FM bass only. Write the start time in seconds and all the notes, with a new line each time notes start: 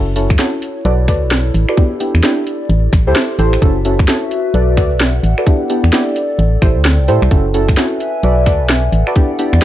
Already playing: F#1
0.30 F#2
0.85 B1
1.08 D2
1.22 B1
1.54 A1
2.15 E2
2.69 A1
2.93 A1
3.07 D2
3.39 A1
3.62 F#1
3.99 F#2
4.54 B1
4.77 D2
4.91 B1
5.23 A1
5.84 E2
6.39 A1
6.62 A1
6.76 D2
6.99 C2
7.08 A2
7.22 C2
7.31 F#1
7.69 F#2
8.23 B1
8.46 D2
8.60 B1
8.92 A1
9.53 E2